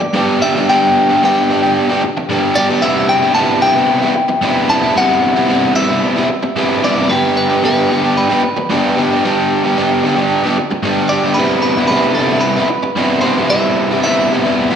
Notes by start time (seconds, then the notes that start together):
Already playing: D5
0.01 muted overdriven electric guitar stroke
0.14 G2 D3 G3 B3 D4 G4
0.41 G3 B3 D4 G4 E5
0.55 G3 B3 D4 G4
0.68 G2 D3 G3 B3 D4 G4 G5
1.09 G3 B3 D4 G4
1.23 G2 D3 G3 B3 D4 G4 G5
1.49 G3 B3 D4 G4
1.63 G3 B3 D4 G4
1.89 G3 B3 D4 G4
2.03 muted overdriven electric guitar stroke
2.17 muted overdriven electric guitar stroke
2.29 G2 D3 G3 B3 D4 G4
2.55 G3 B3 D4 G4 D5
2.69 G3 B3 D4 G4
2.82 C2 G2 C3 G3 B3 E4 E5
3.09 G5
3.22 C3 G3 B3 E4
3.35 C2 G2 C3 G3 B3 E4 A5
3.61 C3 G3 B3 E4 G5
3.75 C3 G3 B3 E4
4.02 C3 G3 B3 E4
4.15 muted overdriven electric guitar stroke
4.29 muted overdriven electric guitar stroke
4.41 C2 G2 C3 G3 B3 E4
4.68 C3 G3 B3 E4 A5
4.82 C3 G3 B3 E4
4.95 C2 G2 C3 G3 B3 E4 F#5
5.35 C3 G3 B3 E4
5.48 C2 G2 C3 G3 B3 E4
5.76 C3 G3 B3 E4 E5
5.89 C3 G3 B3 E4
6.16 C3 G3 B3 E4
6.30 muted overdriven electric guitar stroke
6.43 muted overdriven electric guitar stroke
6.56 C2 G2 C3 G3 B3 E4
6.83 C3 G3 B3 E4 D5
6.95 C3 G3 B3 E4
7.09 G2 D3 G3 B3 D4 G4 B4
7.37 B4
7.49 G3 B3 D4 G4
7.62 G2 D3 G3 B3 D4 G4 B4
7.89 G3 B3 D4 G4
8.02 G3 B3 D4 G4
8.17 B4
8.29 G3 B3 D4 G4
8.44 muted overdriven electric guitar stroke
8.57 muted overdriven electric guitar stroke
8.70 G2 D3 G3 B3 D4 G4
8.97 G3 B3 D4 G4
9.10 G3 B3 D4 G4
9.23 G2 D3 G3 B3 D4 G4
9.63 G3 B3 D4 G4
9.76 G2 D3 G3 B3 D4 G4
10.04 G3 B3 D4 G4
10.16 G3 B3 D4 G4
10.44 G3 B3 D4 G4
10.58 muted overdriven electric guitar stroke
10.71 muted overdriven electric guitar stroke
10.83 G2 D3 G3 B3 D4 G4
11.09 G3 B3 D4 G4 D5
11.24 G3 B3 D4 G4
11.34 C2 G2 C3 B4
11.39 G3 B3 E4
11.62 B4
11.77 C3 G3 B3 E4
11.88 C2 G2 C3 G3 B4
11.92 B3 E4
12.15 C3 G3 B3 A4
12.19 E4
12.29 C3 G3 B3 E4
12.41 B4
12.57 C3 G3 B3 E4
12.70 muted overdriven electric guitar stroke
12.83 muted overdriven electric guitar stroke
12.96 C2 G2 C3 G3 B3 E4
13.21 C3 G3 B3 E4 C5
13.36 C3 G3 B3 E4
13.49 C2 G2 C3 G3 B3 E4 E5
13.91 C3 G3 B3 E4
14.04 C2 G2 C3 G3 B3 E4 E5
14.31 C3 G3 B3 E4
14.43 C3 G3 B3 E4
14.70 B3 E4